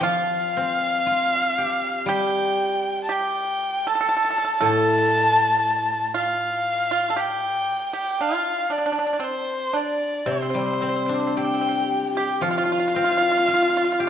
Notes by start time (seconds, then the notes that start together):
0.01 F3 F4 F5
0.57 C4
1.06 F4
1.58 G4
2.06 G3 G4 G5
3.04 A5
3.09 G4 G5
3.87 A4 A5
3.95 A4
4.01 A4
4.09 A4
4.17 A4
4.25 A4
4.30 A4
4.38 A4
4.45 A4
4.61 A2 A4
4.65 A5
6.14 F4 F5
6.91 F4
7.10 A4
7.16 G4 G5
7.93 G4 G5
8.21 F4 F5
8.70 D4 D5
8.78 D4
8.86 D4
8.92 D4
8.99 D4
9.07 D4
9.13 D4
9.20 C4 C5
9.73 D4 D5
10.26 C3 C4
10.30 C4 C5
10.43 C4
10.50 C4
10.54 G3
10.59 C4
10.66 C4
10.73 C4
10.81 C4
10.89 C4
10.96 C4
11.06 C4 D4
11.14 C4
11.20 C4
11.27 C4
11.36 C4 G4 G5
11.44 C4
11.54 C4
11.61 C4
11.69 C4
12.17 G4 G5
12.36 G5
12.41 F3 F4 F5
12.51 F4
12.58 F4
12.65 F4
12.72 F4
12.79 F4
12.88 F4
12.95 C4 F4
13.04 F4
13.11 F4
13.17 F4
13.23 F4
13.32 F4
13.38 F4
13.48 F4
13.54 F4
13.62 F4
13.70 F4
13.77 F4
13.84 F4
13.92 F4
13.99 F4 G4